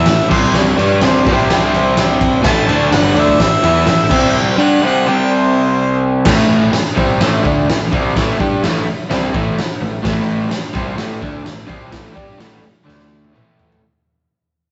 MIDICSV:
0, 0, Header, 1, 7, 480
1, 0, Start_track
1, 0, Tempo, 473934
1, 550, Time_signature, 4, 2, 24, 8
1, 14899, End_track
2, 0, Start_track
2, 0, Title_t, "Harmonica"
2, 0, Program_c, 0, 22
2, 0, Note_on_c, 0, 76, 103
2, 284, Note_off_c, 0, 76, 0
2, 313, Note_on_c, 0, 72, 94
2, 555, Note_on_c, 0, 73, 99
2, 570, Note_off_c, 0, 72, 0
2, 1033, Note_off_c, 0, 73, 0
2, 1061, Note_on_c, 0, 72, 80
2, 1967, Note_off_c, 0, 72, 0
2, 2489, Note_on_c, 0, 81, 127
2, 2971, Note_on_c, 0, 78, 105
2, 2987, Note_off_c, 0, 81, 0
2, 3204, Note_off_c, 0, 78, 0
2, 3224, Note_on_c, 0, 76, 127
2, 4426, Note_on_c, 0, 79, 104
2, 4442, Note_off_c, 0, 76, 0
2, 4675, Note_on_c, 0, 78, 92
2, 4690, Note_off_c, 0, 79, 0
2, 4898, Note_off_c, 0, 78, 0
2, 4922, Note_on_c, 0, 78, 95
2, 5146, Note_on_c, 0, 79, 101
2, 5162, Note_off_c, 0, 78, 0
2, 5400, Note_on_c, 0, 72, 83
2, 5416, Note_off_c, 0, 79, 0
2, 6104, Note_off_c, 0, 72, 0
2, 14899, End_track
3, 0, Start_track
3, 0, Title_t, "Overdriven electric guitar"
3, 0, Program_c, 1, 29
3, 66, Note_on_c, 1, 45, 66
3, 68, Note_on_c, 1, 52, 72
3, 260, Note_off_c, 1, 45, 0
3, 261, Note_off_c, 1, 52, 0
3, 292, Note_on_c, 1, 48, 100
3, 301, Note_on_c, 1, 55, 92
3, 309, Note_on_c, 1, 60, 97
3, 758, Note_off_c, 1, 55, 0
3, 770, Note_on_c, 1, 55, 94
3, 774, Note_off_c, 1, 48, 0
3, 776, Note_off_c, 1, 60, 0
3, 780, Note_on_c, 1, 62, 96
3, 793, Note_on_c, 1, 67, 109
3, 1013, Note_off_c, 1, 55, 0
3, 1018, Note_off_c, 1, 62, 0
3, 1024, Note_on_c, 1, 48, 89
3, 1025, Note_off_c, 1, 67, 0
3, 1042, Note_on_c, 1, 55, 90
3, 1047, Note_on_c, 1, 60, 102
3, 1258, Note_off_c, 1, 48, 0
3, 1266, Note_off_c, 1, 55, 0
3, 1270, Note_on_c, 1, 48, 96
3, 1272, Note_off_c, 1, 60, 0
3, 1278, Note_on_c, 1, 55, 99
3, 1285, Note_on_c, 1, 60, 110
3, 2446, Note_off_c, 1, 48, 0
3, 2450, Note_on_c, 1, 45, 99
3, 2451, Note_off_c, 1, 55, 0
3, 2455, Note_on_c, 1, 52, 103
3, 2465, Note_off_c, 1, 60, 0
3, 2469, Note_on_c, 1, 57, 112
3, 2695, Note_off_c, 1, 45, 0
3, 2698, Note_off_c, 1, 52, 0
3, 2705, Note_off_c, 1, 57, 0
3, 2705, Note_on_c, 1, 50, 100
3, 2718, Note_on_c, 1, 57, 100
3, 2721, Note_on_c, 1, 62, 114
3, 2932, Note_off_c, 1, 50, 0
3, 2935, Note_on_c, 1, 43, 87
3, 2944, Note_on_c, 1, 50, 100
3, 2949, Note_off_c, 1, 57, 0
3, 2951, Note_off_c, 1, 62, 0
3, 2963, Note_on_c, 1, 55, 109
3, 3171, Note_off_c, 1, 50, 0
3, 3179, Note_off_c, 1, 43, 0
3, 3183, Note_on_c, 1, 50, 93
3, 3188, Note_off_c, 1, 55, 0
3, 3192, Note_on_c, 1, 57, 101
3, 3203, Note_on_c, 1, 62, 111
3, 3423, Note_off_c, 1, 50, 0
3, 3427, Note_off_c, 1, 57, 0
3, 3433, Note_off_c, 1, 62, 0
3, 3436, Note_on_c, 1, 45, 67
3, 3440, Note_on_c, 1, 52, 81
3, 3629, Note_off_c, 1, 45, 0
3, 3631, Note_off_c, 1, 52, 0
3, 3673, Note_on_c, 1, 52, 91
3, 3685, Note_on_c, 1, 59, 98
3, 3691, Note_on_c, 1, 64, 95
3, 3906, Note_off_c, 1, 52, 0
3, 3912, Note_on_c, 1, 45, 65
3, 3914, Note_off_c, 1, 59, 0
3, 3918, Note_off_c, 1, 64, 0
3, 3918, Note_on_c, 1, 52, 70
3, 4108, Note_off_c, 1, 45, 0
3, 4111, Note_off_c, 1, 52, 0
3, 4148, Note_on_c, 1, 48, 92
3, 4163, Note_on_c, 1, 55, 94
3, 4165, Note_on_c, 1, 60, 93
3, 4618, Note_off_c, 1, 55, 0
3, 4628, Note_off_c, 1, 48, 0
3, 4630, Note_on_c, 1, 55, 93
3, 4633, Note_off_c, 1, 60, 0
3, 4637, Note_on_c, 1, 62, 96
3, 4653, Note_on_c, 1, 67, 103
3, 4869, Note_off_c, 1, 55, 0
3, 4872, Note_off_c, 1, 62, 0
3, 4873, Note_on_c, 1, 48, 80
3, 4880, Note_off_c, 1, 67, 0
3, 4890, Note_on_c, 1, 55, 100
3, 4902, Note_on_c, 1, 60, 93
3, 5111, Note_off_c, 1, 48, 0
3, 5119, Note_off_c, 1, 55, 0
3, 5125, Note_off_c, 1, 60, 0
3, 5128, Note_on_c, 1, 48, 81
3, 5146, Note_on_c, 1, 55, 98
3, 5151, Note_on_c, 1, 60, 92
3, 6321, Note_off_c, 1, 48, 0
3, 6330, Note_off_c, 1, 55, 0
3, 6332, Note_off_c, 1, 60, 0
3, 6335, Note_on_c, 1, 45, 99
3, 6348, Note_on_c, 1, 52, 105
3, 6354, Note_on_c, 1, 57, 111
3, 6804, Note_off_c, 1, 45, 0
3, 6810, Note_off_c, 1, 52, 0
3, 6813, Note_off_c, 1, 57, 0
3, 7045, Note_on_c, 1, 48, 95
3, 7057, Note_on_c, 1, 55, 103
3, 7070, Note_on_c, 1, 60, 93
3, 7279, Note_off_c, 1, 48, 0
3, 7285, Note_off_c, 1, 55, 0
3, 7290, Note_on_c, 1, 45, 92
3, 7291, Note_off_c, 1, 60, 0
3, 7307, Note_on_c, 1, 52, 90
3, 7315, Note_on_c, 1, 57, 104
3, 7521, Note_off_c, 1, 45, 0
3, 7525, Note_on_c, 1, 50, 102
3, 7527, Note_off_c, 1, 57, 0
3, 7530, Note_off_c, 1, 52, 0
3, 7540, Note_on_c, 1, 57, 89
3, 7549, Note_on_c, 1, 62, 109
3, 7759, Note_off_c, 1, 50, 0
3, 7766, Note_off_c, 1, 57, 0
3, 7771, Note_off_c, 1, 62, 0
3, 7778, Note_on_c, 1, 52, 84
3, 7782, Note_on_c, 1, 45, 60
3, 7965, Note_off_c, 1, 52, 0
3, 7967, Note_off_c, 1, 45, 0
3, 8018, Note_on_c, 1, 48, 89
3, 8028, Note_on_c, 1, 55, 101
3, 8033, Note_on_c, 1, 60, 109
3, 8246, Note_off_c, 1, 48, 0
3, 8251, Note_off_c, 1, 55, 0
3, 8253, Note_off_c, 1, 60, 0
3, 8258, Note_on_c, 1, 45, 113
3, 8270, Note_on_c, 1, 52, 104
3, 8283, Note_on_c, 1, 57, 120
3, 8486, Note_off_c, 1, 45, 0
3, 8489, Note_off_c, 1, 52, 0
3, 8493, Note_on_c, 1, 55, 88
3, 8497, Note_off_c, 1, 57, 0
3, 8501, Note_on_c, 1, 62, 118
3, 8513, Note_on_c, 1, 67, 97
3, 8723, Note_off_c, 1, 55, 0
3, 8727, Note_off_c, 1, 62, 0
3, 8734, Note_off_c, 1, 67, 0
3, 8738, Note_on_c, 1, 45, 93
3, 8745, Note_on_c, 1, 52, 103
3, 8750, Note_on_c, 1, 57, 115
3, 8966, Note_off_c, 1, 45, 0
3, 8969, Note_off_c, 1, 52, 0
3, 8972, Note_off_c, 1, 57, 0
3, 9208, Note_on_c, 1, 48, 96
3, 9222, Note_on_c, 1, 55, 100
3, 9229, Note_on_c, 1, 60, 115
3, 9441, Note_off_c, 1, 48, 0
3, 9448, Note_off_c, 1, 55, 0
3, 9451, Note_off_c, 1, 60, 0
3, 9451, Note_on_c, 1, 45, 88
3, 9464, Note_on_c, 1, 52, 100
3, 9472, Note_on_c, 1, 57, 94
3, 9682, Note_off_c, 1, 45, 0
3, 9689, Note_off_c, 1, 52, 0
3, 9693, Note_off_c, 1, 57, 0
3, 9936, Note_on_c, 1, 45, 72
3, 9937, Note_on_c, 1, 52, 75
3, 10124, Note_off_c, 1, 45, 0
3, 10124, Note_off_c, 1, 52, 0
3, 10150, Note_on_c, 1, 45, 110
3, 10165, Note_on_c, 1, 52, 113
3, 10174, Note_on_c, 1, 57, 110
3, 10629, Note_off_c, 1, 45, 0
3, 10638, Note_off_c, 1, 52, 0
3, 10643, Note_off_c, 1, 57, 0
3, 10877, Note_on_c, 1, 48, 107
3, 10891, Note_on_c, 1, 55, 109
3, 10902, Note_on_c, 1, 60, 109
3, 11101, Note_off_c, 1, 48, 0
3, 11105, Note_on_c, 1, 45, 106
3, 11116, Note_off_c, 1, 55, 0
3, 11120, Note_on_c, 1, 52, 96
3, 11123, Note_off_c, 1, 60, 0
3, 11128, Note_on_c, 1, 57, 110
3, 11348, Note_off_c, 1, 45, 0
3, 11350, Note_off_c, 1, 57, 0
3, 11354, Note_on_c, 1, 50, 91
3, 11356, Note_off_c, 1, 52, 0
3, 11362, Note_on_c, 1, 57, 103
3, 11372, Note_on_c, 1, 62, 98
3, 11583, Note_off_c, 1, 50, 0
3, 11584, Note_off_c, 1, 57, 0
3, 11587, Note_on_c, 1, 45, 72
3, 11588, Note_on_c, 1, 52, 74
3, 11601, Note_off_c, 1, 62, 0
3, 11788, Note_off_c, 1, 45, 0
3, 11789, Note_off_c, 1, 52, 0
3, 11816, Note_on_c, 1, 48, 96
3, 11827, Note_on_c, 1, 55, 97
3, 11837, Note_on_c, 1, 60, 108
3, 12063, Note_off_c, 1, 48, 0
3, 12068, Note_off_c, 1, 55, 0
3, 12068, Note_on_c, 1, 45, 101
3, 12073, Note_off_c, 1, 60, 0
3, 12085, Note_on_c, 1, 52, 117
3, 12090, Note_on_c, 1, 57, 103
3, 12283, Note_off_c, 1, 52, 0
3, 12287, Note_on_c, 1, 55, 98
3, 12298, Note_off_c, 1, 57, 0
3, 12302, Note_on_c, 1, 62, 101
3, 12306, Note_on_c, 1, 67, 112
3, 12308, Note_off_c, 1, 45, 0
3, 12538, Note_off_c, 1, 55, 0
3, 12539, Note_on_c, 1, 45, 92
3, 12545, Note_off_c, 1, 62, 0
3, 12547, Note_off_c, 1, 67, 0
3, 12551, Note_on_c, 1, 52, 106
3, 12562, Note_on_c, 1, 57, 106
3, 12775, Note_off_c, 1, 45, 0
3, 12789, Note_off_c, 1, 52, 0
3, 12795, Note_off_c, 1, 57, 0
3, 13005, Note_on_c, 1, 50, 94
3, 13021, Note_on_c, 1, 57, 101
3, 13029, Note_on_c, 1, 62, 100
3, 13491, Note_off_c, 1, 50, 0
3, 13495, Note_on_c, 1, 45, 97
3, 13501, Note_off_c, 1, 57, 0
3, 13505, Note_on_c, 1, 52, 99
3, 13506, Note_off_c, 1, 62, 0
3, 13514, Note_on_c, 1, 57, 111
3, 13978, Note_off_c, 1, 45, 0
3, 13983, Note_off_c, 1, 52, 0
3, 13988, Note_off_c, 1, 57, 0
3, 14899, End_track
4, 0, Start_track
4, 0, Title_t, "Picked electric bass"
4, 0, Program_c, 2, 34
4, 67, Note_on_c, 2, 33, 88
4, 292, Note_off_c, 2, 33, 0
4, 314, Note_on_c, 2, 36, 89
4, 759, Note_off_c, 2, 36, 0
4, 786, Note_on_c, 2, 43, 102
4, 1011, Note_off_c, 2, 43, 0
4, 1028, Note_on_c, 2, 36, 101
4, 1253, Note_off_c, 2, 36, 0
4, 1277, Note_on_c, 2, 36, 98
4, 2436, Note_off_c, 2, 36, 0
4, 2477, Note_on_c, 2, 33, 99
4, 2699, Note_off_c, 2, 33, 0
4, 2713, Note_on_c, 2, 38, 97
4, 2937, Note_off_c, 2, 38, 0
4, 2947, Note_on_c, 2, 31, 103
4, 3175, Note_off_c, 2, 31, 0
4, 3187, Note_on_c, 2, 38, 100
4, 3415, Note_off_c, 2, 38, 0
4, 3445, Note_on_c, 2, 33, 83
4, 3665, Note_off_c, 2, 33, 0
4, 3673, Note_on_c, 2, 40, 94
4, 3899, Note_off_c, 2, 40, 0
4, 3911, Note_on_c, 2, 33, 84
4, 4138, Note_off_c, 2, 33, 0
4, 4161, Note_on_c, 2, 36, 96
4, 4384, Note_off_c, 2, 36, 0
4, 6338, Note_on_c, 2, 33, 103
4, 6779, Note_off_c, 2, 33, 0
4, 7062, Note_on_c, 2, 36, 101
4, 7278, Note_off_c, 2, 36, 0
4, 7302, Note_on_c, 2, 33, 106
4, 7518, Note_off_c, 2, 33, 0
4, 7548, Note_on_c, 2, 38, 107
4, 7762, Note_off_c, 2, 38, 0
4, 7791, Note_on_c, 2, 33, 94
4, 8003, Note_off_c, 2, 33, 0
4, 8029, Note_on_c, 2, 36, 102
4, 8243, Note_off_c, 2, 36, 0
4, 8271, Note_on_c, 2, 33, 108
4, 8484, Note_off_c, 2, 33, 0
4, 8507, Note_on_c, 2, 43, 106
4, 8721, Note_off_c, 2, 43, 0
4, 8761, Note_on_c, 2, 33, 106
4, 8969, Note_off_c, 2, 33, 0
4, 9225, Note_on_c, 2, 36, 109
4, 9441, Note_off_c, 2, 36, 0
4, 9463, Note_on_c, 2, 33, 94
4, 9679, Note_off_c, 2, 33, 0
4, 9936, Note_on_c, 2, 33, 92
4, 10155, Note_off_c, 2, 33, 0
4, 10179, Note_on_c, 2, 33, 103
4, 10620, Note_off_c, 2, 33, 0
4, 10886, Note_on_c, 2, 36, 96
4, 11109, Note_off_c, 2, 36, 0
4, 11127, Note_on_c, 2, 33, 106
4, 11349, Note_off_c, 2, 33, 0
4, 11367, Note_on_c, 2, 38, 107
4, 11589, Note_off_c, 2, 38, 0
4, 11610, Note_on_c, 2, 33, 89
4, 11830, Note_off_c, 2, 33, 0
4, 11843, Note_on_c, 2, 36, 99
4, 12067, Note_off_c, 2, 36, 0
4, 12085, Note_on_c, 2, 33, 106
4, 12307, Note_off_c, 2, 33, 0
4, 12323, Note_on_c, 2, 43, 109
4, 12546, Note_off_c, 2, 43, 0
4, 12559, Note_on_c, 2, 33, 101
4, 12784, Note_off_c, 2, 33, 0
4, 13041, Note_on_c, 2, 38, 107
4, 13486, Note_off_c, 2, 38, 0
4, 13527, Note_on_c, 2, 33, 106
4, 13968, Note_off_c, 2, 33, 0
4, 14899, End_track
5, 0, Start_track
5, 0, Title_t, "Muted overdriven electric guitar strokes"
5, 6818, Note_on_c, 9, 29, 63
5, 6919, Note_off_c, 9, 29, 0
5, 8978, Note_on_c, 9, 29, 66
5, 9080, Note_off_c, 9, 29, 0
5, 10641, Note_on_c, 9, 29, 60
5, 10742, Note_off_c, 9, 29, 0
5, 12787, Note_on_c, 9, 29, 65
5, 12888, Note_off_c, 9, 29, 0
5, 14899, End_track
6, 0, Start_track
6, 0, Title_t, "Muted picked electric bass strokes"
6, 6804, Note_on_c, 9, 29, 45
6, 6905, Note_off_c, 9, 29, 0
6, 8999, Note_on_c, 9, 29, 42
6, 9101, Note_off_c, 9, 29, 0
6, 10652, Note_on_c, 9, 29, 45
6, 10753, Note_off_c, 9, 29, 0
6, 12804, Note_on_c, 9, 29, 44
6, 12905, Note_off_c, 9, 29, 0
6, 14899, End_track
7, 0, Start_track
7, 0, Title_t, "Drums"
7, 60, Note_on_c, 9, 38, 122
7, 63, Note_on_c, 9, 51, 105
7, 161, Note_off_c, 9, 38, 0
7, 164, Note_off_c, 9, 51, 0
7, 311, Note_on_c, 9, 49, 101
7, 316, Note_on_c, 9, 36, 112
7, 412, Note_off_c, 9, 49, 0
7, 417, Note_off_c, 9, 36, 0
7, 548, Note_on_c, 9, 38, 109
7, 649, Note_off_c, 9, 38, 0
7, 801, Note_on_c, 9, 51, 71
7, 902, Note_off_c, 9, 51, 0
7, 1027, Note_on_c, 9, 38, 115
7, 1030, Note_on_c, 9, 51, 98
7, 1129, Note_off_c, 9, 38, 0
7, 1132, Note_off_c, 9, 51, 0
7, 1280, Note_on_c, 9, 36, 109
7, 1282, Note_on_c, 9, 51, 73
7, 1382, Note_off_c, 9, 36, 0
7, 1383, Note_off_c, 9, 51, 0
7, 1522, Note_on_c, 9, 38, 116
7, 1525, Note_on_c, 9, 51, 104
7, 1623, Note_off_c, 9, 38, 0
7, 1626, Note_off_c, 9, 51, 0
7, 1765, Note_on_c, 9, 51, 77
7, 1866, Note_off_c, 9, 51, 0
7, 1998, Note_on_c, 9, 38, 121
7, 2001, Note_on_c, 9, 51, 106
7, 2099, Note_off_c, 9, 38, 0
7, 2102, Note_off_c, 9, 51, 0
7, 2237, Note_on_c, 9, 51, 80
7, 2240, Note_on_c, 9, 36, 84
7, 2338, Note_off_c, 9, 51, 0
7, 2341, Note_off_c, 9, 36, 0
7, 2473, Note_on_c, 9, 38, 119
7, 2476, Note_on_c, 9, 51, 113
7, 2480, Note_on_c, 9, 36, 112
7, 2574, Note_off_c, 9, 38, 0
7, 2577, Note_off_c, 9, 51, 0
7, 2581, Note_off_c, 9, 36, 0
7, 2724, Note_on_c, 9, 51, 78
7, 2825, Note_off_c, 9, 51, 0
7, 2963, Note_on_c, 9, 38, 123
7, 2966, Note_on_c, 9, 51, 111
7, 3064, Note_off_c, 9, 38, 0
7, 3067, Note_off_c, 9, 51, 0
7, 3207, Note_on_c, 9, 51, 76
7, 3308, Note_off_c, 9, 51, 0
7, 3324, Note_on_c, 9, 36, 81
7, 3425, Note_off_c, 9, 36, 0
7, 3443, Note_on_c, 9, 38, 108
7, 3444, Note_on_c, 9, 36, 108
7, 3446, Note_on_c, 9, 51, 99
7, 3544, Note_off_c, 9, 38, 0
7, 3545, Note_off_c, 9, 36, 0
7, 3547, Note_off_c, 9, 51, 0
7, 3682, Note_on_c, 9, 51, 78
7, 3783, Note_off_c, 9, 51, 0
7, 3918, Note_on_c, 9, 38, 113
7, 3921, Note_on_c, 9, 51, 102
7, 4019, Note_off_c, 9, 38, 0
7, 4022, Note_off_c, 9, 51, 0
7, 4161, Note_on_c, 9, 49, 107
7, 4163, Note_on_c, 9, 36, 120
7, 4262, Note_off_c, 9, 49, 0
7, 4264, Note_off_c, 9, 36, 0
7, 6332, Note_on_c, 9, 38, 125
7, 6335, Note_on_c, 9, 57, 127
7, 6338, Note_on_c, 9, 36, 120
7, 6434, Note_off_c, 9, 38, 0
7, 6437, Note_off_c, 9, 57, 0
7, 6439, Note_off_c, 9, 36, 0
7, 6818, Note_on_c, 9, 38, 111
7, 6821, Note_on_c, 9, 46, 77
7, 6919, Note_off_c, 9, 38, 0
7, 6922, Note_off_c, 9, 46, 0
7, 7062, Note_on_c, 9, 36, 106
7, 7163, Note_off_c, 9, 36, 0
7, 7301, Note_on_c, 9, 38, 127
7, 7305, Note_on_c, 9, 46, 65
7, 7403, Note_off_c, 9, 38, 0
7, 7406, Note_off_c, 9, 46, 0
7, 7548, Note_on_c, 9, 36, 117
7, 7649, Note_off_c, 9, 36, 0
7, 7795, Note_on_c, 9, 38, 126
7, 7798, Note_on_c, 9, 46, 71
7, 7896, Note_off_c, 9, 38, 0
7, 7899, Note_off_c, 9, 46, 0
7, 8029, Note_on_c, 9, 36, 118
7, 8130, Note_off_c, 9, 36, 0
7, 8270, Note_on_c, 9, 36, 125
7, 8274, Note_on_c, 9, 38, 121
7, 8277, Note_on_c, 9, 46, 66
7, 8371, Note_off_c, 9, 36, 0
7, 8376, Note_off_c, 9, 38, 0
7, 8379, Note_off_c, 9, 46, 0
7, 8510, Note_on_c, 9, 36, 108
7, 8611, Note_off_c, 9, 36, 0
7, 8749, Note_on_c, 9, 38, 127
7, 8752, Note_on_c, 9, 46, 70
7, 8850, Note_off_c, 9, 38, 0
7, 8853, Note_off_c, 9, 46, 0
7, 9224, Note_on_c, 9, 38, 121
7, 9227, Note_on_c, 9, 46, 66
7, 9325, Note_off_c, 9, 38, 0
7, 9328, Note_off_c, 9, 46, 0
7, 9464, Note_on_c, 9, 36, 122
7, 9565, Note_off_c, 9, 36, 0
7, 9707, Note_on_c, 9, 38, 127
7, 9711, Note_on_c, 9, 46, 74
7, 9809, Note_off_c, 9, 38, 0
7, 9812, Note_off_c, 9, 46, 0
7, 10179, Note_on_c, 9, 36, 114
7, 10179, Note_on_c, 9, 38, 127
7, 10182, Note_on_c, 9, 46, 70
7, 10280, Note_off_c, 9, 36, 0
7, 10281, Note_off_c, 9, 38, 0
7, 10284, Note_off_c, 9, 46, 0
7, 10648, Note_on_c, 9, 38, 116
7, 10651, Note_on_c, 9, 46, 72
7, 10749, Note_off_c, 9, 38, 0
7, 10752, Note_off_c, 9, 46, 0
7, 10889, Note_on_c, 9, 36, 114
7, 10990, Note_off_c, 9, 36, 0
7, 11123, Note_on_c, 9, 38, 127
7, 11126, Note_on_c, 9, 46, 69
7, 11224, Note_off_c, 9, 38, 0
7, 11227, Note_off_c, 9, 46, 0
7, 11367, Note_on_c, 9, 36, 109
7, 11469, Note_off_c, 9, 36, 0
7, 11607, Note_on_c, 9, 38, 122
7, 11610, Note_on_c, 9, 46, 77
7, 11708, Note_off_c, 9, 38, 0
7, 11711, Note_off_c, 9, 46, 0
7, 11844, Note_on_c, 9, 36, 117
7, 11946, Note_off_c, 9, 36, 0
7, 12077, Note_on_c, 9, 38, 123
7, 12080, Note_on_c, 9, 46, 69
7, 12086, Note_on_c, 9, 36, 117
7, 12178, Note_off_c, 9, 38, 0
7, 12181, Note_off_c, 9, 46, 0
7, 12187, Note_off_c, 9, 36, 0
7, 12326, Note_on_c, 9, 36, 117
7, 12427, Note_off_c, 9, 36, 0
7, 12563, Note_on_c, 9, 38, 123
7, 12566, Note_on_c, 9, 46, 67
7, 12665, Note_off_c, 9, 38, 0
7, 12668, Note_off_c, 9, 46, 0
7, 13048, Note_on_c, 9, 38, 69
7, 13149, Note_off_c, 9, 38, 0
7, 13157, Note_on_c, 9, 38, 60
7, 13258, Note_off_c, 9, 38, 0
7, 13412, Note_on_c, 9, 48, 80
7, 13513, Note_off_c, 9, 48, 0
7, 13530, Note_on_c, 9, 47, 103
7, 13631, Note_off_c, 9, 47, 0
7, 13767, Note_on_c, 9, 43, 111
7, 13868, Note_off_c, 9, 43, 0
7, 13899, Note_on_c, 9, 43, 102
7, 14000, Note_off_c, 9, 43, 0
7, 14899, End_track
0, 0, End_of_file